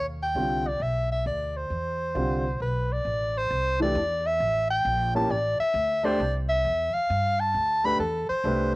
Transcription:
Already playing: D#2
0.23 G5
0.35 C2 D3 G3 C4 F4
0.67 D5
0.80 B1 E5
1.12 E5
1.26 D2 D5
1.57 C5
1.70 E2
2.15 C2 D3 G3 C4 F4
2.60 B1 B4
2.92 D5
3.05 A1
3.38 C5
3.50 C2
3.80 E3 A3 D4 G4 D5
3.95 E2
4.26 E5
4.40 A1
4.70 G5
4.85 A#1
5.15 A#3 C#4 E4 G4 A5
5.30 A1 D5
5.60 E5, muted upright bass stroke
5.74 D2
6.03 A3 D4 G4 C5 D5
6.20 C2
6.49 E5
6.65 E2
6.93 F5, muted upright bass stroke
7.10 G2
7.40 A5
7.54 D2
7.84 A3 D4 G4 B4 B5
7.99 E2 A4
8.29 C5, muted upright bass stroke
8.44 C2 A3 D4 G4 B4

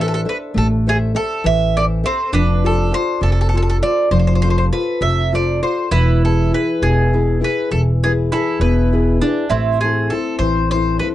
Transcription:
Already playing: A1 E3 D4 A4 C5 E5
0.01 A4
0.08 A4
0.14 A4
0.25 A4 B4 C5 E5
0.54 A1 A3 A4
0.87 G#4 A4 C5 E5
1.15 A4 C5 E5
1.44 A1 E3 E5
1.76 A4 C5 D5 E5
2.04 C4 A4 C5 E5
2.32 F1 F3 D4 B4
2.64 F4 A4 C5
2.91 F4 A4 C5
3.21 F1 C3 A4
3.32 A4
3.41 A4
3.49 A4
3.54 F4 A4 C5
3.62 A4
3.70 A4
3.82 F4 A4 C5 D5
4.11 F1 F3 C5
4.19 C5
4.27 C5
4.35 C5
4.42 F4 A4 C5
4.50 C5
4.58 C5
4.72 F4 A4 B4 C5
5.01 F1 C3 E5
5.32 F4 A4 C5 D5
5.62 F4 A4 C5
5.91 E1 E3 E4 B4
6.24 E4 G#4 A4 B4
6.53 E4 G#4 B4
6.82 E1 B2 G#4
7.13 E4 G#4 B4
7.41 E4 G#4 B4
7.71 E1 E3 A4
8.04 E4 G#4 B4
8.32 E4 G#4 A4 B4
8.60 E1 B2 B4
8.93 E4 G#4 B4
9.21 D4 E4 G#4 B4
9.50 A1 A3 C4 E4
9.81 E4 G#4 A4 C5
10.10 E4 A4 C5
10.39 A1 E3 C5
10.71 E4 A4 C5
10.99 E4 A4 B4 C5

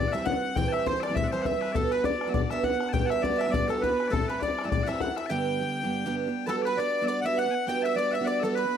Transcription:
Already playing: A2 E3 G3 C4 G4 D5
0.08 F#5
0.12 A2 E3 G3 C4 G4 E5, bodhran
0.25 F#5, bodhran
0.35 G3 C4 G4
0.56 A2 E3 G3 C4 G4 G5, bodhran
0.68 E5 A5
0.73 E5, bodhran
0.86 E3 G3 C4 G4 C5, bodhran
1.00 D5 E5, bodhran
1.09 A2 E3 G3 C4 G4
1.15 E5, bodhran
1.24 F#5
1.28 C5 D5
1.32 A2 E3 G3 C4 G4 C5, bodhran
1.42 E5 F#5, bodhran
1.52 G3 C4 G4
1.61 B4, bodhran
1.72 G3 B3 D4 A4 D5, bodhran
1.76 F#4
1.91 B4, bodhran
2.04 G3 B3 D4 F#4 D5, bodhran
2.21 bodhran
2.27 G3 B3 D4 F#4 E5
2.33 D5, bodhran
2.50 G3 B3 D4 F#4 E5, bodhran
2.64 F#5, bodhran
2.72 B3 D4 F#4
2.80 bodhran
2.89 A5
2.93 G3 B3 D4 F#4 G5, bodhran
3.05 F#5 A5
3.10 E5, bodhran
3.22 G3 B3 D4 F#4 D5, bodhran
3.36 E5 F#5
3.41 E5, bodhran
3.47 G3 B3 D4 F#4 E5
3.51 D5, bodhran
3.68 G3 B3 D4 F#4 A4, bodhran
3.81 B4, bodhran
3.89 B3 D4 F#4
4.00 bodhran
4.07 A2 G3 C4 A4 D5
4.12 E4 G4 A4, bodhran
4.28 B4, bodhran
4.40 G3 C4 E4 G4 D5, bodhran
4.59 bodhran
4.64 A2 G3 C4 E4 G4 E5
4.70 D5, bodhran
4.83 A2 G3 E5 F#5
4.88 C4 E4 G4 E5, bodhran
5.00 F#5, bodhran
5.08 C4 E4 G4
5.16 E5, bodhran
5.26 G2 D3 G5 A5
5.30 G3 B3 D4 G4 G5
5.60 G3 B3 D4 G4
5.83 G2 D3 G3 B3 D4 G4
6.05 G2 D3 G3 B3 D4 G4
6.27 G3 B3 D4 G4
6.46 G3 B3 D4 F#4 A4 B4 A5
6.62 B4 D5
6.67 B4
6.77 G3 B3 D4 F#4 D5
7.01 G3 B3 D4 F#4 E5
7.07 D5
7.21 G3 B3 E5 F#5
7.26 D4 F#4 E5
7.38 F#5
7.46 B3 D4 F#4
7.51 F#5 G#5
7.67 G3 B3 D4 F#4 G5
7.82 E5 A5
7.95 G3 B3 D4 F#4 D5
8.11 E5 F#5
8.16 E5
8.20 G3 B3 D4 F#4
8.24 D5 F#5
8.40 G3 B3 A4 E5
8.44 D4 F#4 A4
8.55 B4
8.64 B3 D4 F#4

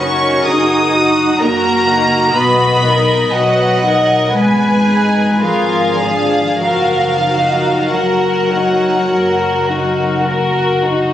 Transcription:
Already playing: F#1 C#4 D#4 F#4 A#4 C#6
0.44 F#1 D#4 F#4 G#4 A#4 D#6
0.93 D#4 F#4
1.40 F#1 A#3 F#4 A#4 A#5
1.88 D#4 F#4
2.35 B1 B3 F#4 B4 D#5 B5
2.84 D#4 A#4
3.32 B1 F#3 F#4 B4 F#5
3.84 D#4 A#4
4.34 G#1 G#3 B3 B4 G#5
4.88 D#4 G#4
5.42 G#1 F3 F4 G#4 A#4 F5
6.00 D4 G#4
6.62 F#1 F3 F#4 A#4 F5
7.27 D#4 F#4
7.90 F#1 F#3 F#4 A#4 F#5
8.50 D#4 F#4
9.09 F#1 F#4 A#4
9.67 D#4 F#4
10.24 F#1 F#4 A#4
10.82 D#4 F#4

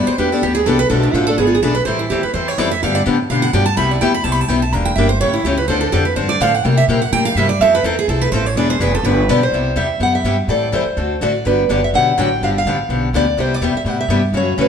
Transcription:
Already playing: E3 B3 D4 G4
0.07 C5, muted upright bass stroke
0.18 E2 E3 B3 D4 G4 B4
0.32 B3 D4 G4 A4
0.42 D2 E3 B3 D4 G4
0.55 G#4
0.66 C2 E3 B3 D4 G4 A4
0.79 B4
0.90 B1 B2 F3 A3 D4 A4
1.03 D4
1.13 A1 B2 F3 A3 D4 F4 A4
1.27 A3 D4 A4
1.38 G#1 E3 B3 D4 G#4
1.47 F4
1.55 G#4
1.62 B1 E3 B3 D4 G#4 A4
1.75 B4
1.85 A1 E3 G3 C4 E4 A4 C5
1.99 E4
2.10 D2 E3 G3 C4 E4 G4 A4
2.23 B4, muted upright bass stroke
2.34 E2 E3 G3 C4 E4 A4 C5
2.48 C#5
2.58 F2 E3 G3 C4 E4 A4 D5
2.71 E5
2.83 G2 D3 F3 B3 D4 G4 F5
2.95 D5
3.06 A2 D3 F3 B3 D4 G4
3.30 B2 D3 F3 B3 D4 G4 F5
3.42 F#5
3.53 G2 D3 F3 B3 D4 G4 G5
3.66 A5
3.77 C2 C3 G3 B3 E4 G4 B5
3.91 D5
4.01 E2 C3 G3 B3 E4 G4 G5
4.14 B5
4.24 C2 C3 G3 B3 E4 G4 A5
4.32 B5
4.41 A5
4.48 B1 C3 G3 B3 E4 G4 G5
4.62 A5
4.72 E1 E3 A#3 D4 G4 A#5
4.85 G5
4.96 G1 E3 A#3 D4 G4 E5
5.09 C5
5.21 A1 C#3 E3 A3 C#4 G4 C#5
5.34 E4
5.44 C#2 C#3 E3 A3 C#4 G4
5.57 B4
5.68 D2 D3 F3 C4 D4 A4 C5
5.81 A4
5.92 F2 D3 F3 C4 D4 G4 A4
6.05 B4
6.16 G2 D3 F3 C4 D4 A4 C5
6.29 D5
6.40 A2 D3 F3 C4 D4 A4 F5
6.54 F#5
6.65 C3 G3 A#3 E4 G4 G5
6.77 E5
6.88 A#2 C3 G3 A#3 E4 G4
7.02 F#5
7.12 A2 C3 G3 A#3 E4 G4 G5
7.25 F5
7.35 G2 C3 G3 A#3 E4 G4 E5
7.49 D5
7.60 F2 F3 C4 E4 A4 E5
7.75 B4
7.84 E2 F3 C4 E4 A4 A#4
7.99 G#4
8.08 C2 F3 C4 E4 A4
8.22 B4
8.32 A1 F3 C4 E4 A4 C5
8.46 C#5
8.56 E1 E3 B3 D4 G#4 D5
8.70 C5
8.79 F1 E3 B3 D4 G#4 B4
8.95 A4
9.03 G1 D3 F3 B3 D4 G4 B4
9.28 B1 D3 F3 B3 D4 G4 D5
9.43 C5
9.52 C2 C3 G3 B3 E4 G4
9.76 E2 C3 G3 B3 E4 G4 E5
10.00 F#2 C3 G3 B3 E4 G4 F#5
10.15 E5
10.24 G2 C3 G3 B3 E4 G4
10.48 A2 E3 G3 C4 E4 A4 D5
10.72 E2 E3 G3 C4 E4 A4 C5
10.86 muted upright bass stroke
10.97 D2 D3 A3 C4 F#4 A4
11.21 A1 D3 A3 C4 F#4 A4 D5
11.45 G1 D3 F#3 B3 D4 G4 B4
11.69 F#1 D3 F#3 B3 D4 G4 D5
11.84 E5
11.93 B1 D3 F#3 B3 D4 G4 F#5
12.17 A1 D3 F#3 B3 D4 G4 G5
12.41 G1 D3 F3 B3 D4 G4 F5
12.58 F5
12.66 A1 D3 F3 B3 D4 G4
12.89 B1 D3 F3 B3 D4 G4
13.13 D2 D3 F3 B3 D4 G4 D5
13.37 C2 C3 G3 B3 E4 G4 C5
13.54 D5
13.61 E2 C3 G3 B3 E4 G4 E5
13.74 E5, muted upright bass stroke
13.85 A2 C3 G3 B3 E4 G4 F#5
14.01 E5
14.08 G2 C3 G3 B3 E4 G4
14.33 F#2 C#3 E3 A3 C#4 F#4
14.37 C#5
14.57 E2 C#3 E3 A3 C#4 F#4 B4

